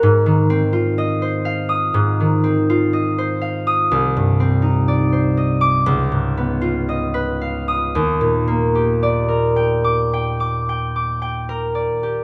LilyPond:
\new Staff \with { instrumentName = "Harp" } { \time 4/4 \key ees \major \tempo 4 = 61 << { r4. r16 ees'''2 ees'''16~ | ees'''4.~ ees'''16 d'''16 r4. r16 ees'''16~ | ees'''4.~ ees'''16 d'''2~ d'''16 | } \\ { aes,16 ees16 c'16 f'16 ees''16 c''16 f''8 aes,16 ees16 c'16 f'16 ees''16 c''16 f''8 | c,16 g,16 c'16 ees'16 d''16 c''16 ees''8 des,16 aes,16 ces'16 f'16 ees''16 ces''16 f''8 | ees,16 bes,16 bes16 g'16 d''16 bes'16 g''8 g''16 d'''16 g''16 d'''16 g''16 bes'16 d''16 g'16 | } >> }